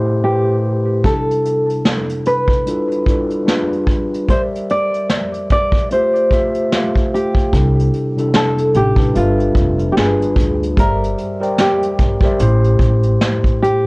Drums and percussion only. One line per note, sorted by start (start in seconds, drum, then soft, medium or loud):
1.04 kick medium
1.04 closed hi-hat medium
1.31 closed hi-hat soft
1.45 closed hi-hat medium
1.70 closed hi-hat soft
1.85 snare loud
1.85 closed hi-hat medium
2.09 closed hi-hat soft
2.25 closed hi-hat medium
2.48 kick medium
2.53 closed hi-hat soft
2.66 closed hi-hat medium
2.91 closed hi-hat soft
3.06 kick medium
3.06 closed hi-hat medium
3.30 closed hi-hat soft
3.48 snare medium
3.48 closed hi-hat medium
3.73 closed hi-hat soft
3.87 kick medium
3.87 closed hi-hat medium
4.14 closed hi-hat soft
4.29 kick medium
4.29 closed hi-hat medium
4.55 closed hi-hat soft
4.69 closed hi-hat medium
4.94 closed hi-hat soft
5.09 snare loud
5.09 closed hi-hat medium
5.34 closed hi-hat soft
5.50 kick medium
5.50 closed hi-hat medium
5.72 kick medium
5.77 closed hi-hat soft
5.90 closed hi-hat medium
6.15 closed hi-hat soft
6.31 kick medium
6.31 closed hi-hat medium
6.54 closed hi-hat soft
6.72 snare loud
6.72 closed hi-hat medium
6.95 kick medium
6.95 closed hi-hat soft
7.15 closed hi-hat medium
7.35 kick medium
7.35 closed hi-hat soft
7.53 kick medium
7.53 closed hi-hat medium
7.80 closed hi-hat soft
7.94 closed hi-hat medium
8.18 closed hi-hat soft
8.34 snare loud
8.34 closed hi-hat medium
8.58 closed hi-hat soft
8.74 closed hi-hat medium
8.96 kick medium
9.01 closed hi-hat soft
9.15 closed hi-hat medium
9.40 closed hi-hat soft
9.55 kick medium
9.55 closed hi-hat medium
9.79 closed hi-hat soft
9.97 snare medium
9.97 closed hi-hat medium
10.21 closed hi-hat soft
10.36 kick medium
10.36 closed hi-hat medium
10.63 closed hi-hat soft
10.77 kick medium
10.77 closed hi-hat medium
11.04 closed hi-hat soft
11.18 closed hi-hat medium
11.43 closed hi-hat soft
11.58 snare loud
11.58 closed hi-hat medium
11.82 closed hi-hat soft
11.98 kick medium
11.98 closed hi-hat medium
12.21 kick medium
12.26 closed hi-hat soft
12.39 closed hi-hat medium
12.64 closed hi-hat soft
12.79 kick medium
12.79 closed hi-hat medium
13.03 closed hi-hat soft
13.21 snare medium
13.21 closed hi-hat medium
13.44 kick medium
13.44 closed hi-hat soft
13.64 closed hi-hat medium